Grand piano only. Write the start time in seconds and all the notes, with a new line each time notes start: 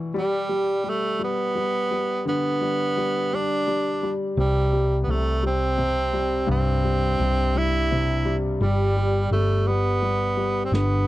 Already playing: B2 E3
0.14 G3
0.49 G3
0.84 G3
1.19 G3
1.55 G3
1.91 G3
2.25 D3
2.61 G3
2.97 G3
3.33 G3
3.68 G3
4.03 G3
4.37 C3
4.73 G3
5.09 C3
5.43 G3
5.78 C3
6.13 G3
6.47 G2
6.84 G3
7.19 C3
7.55 G3
7.91 C3
8.25 G3
8.61 G3
8.97 G3
9.32 G3
9.68 G3
10.02 G3
10.37 G3
10.73 D3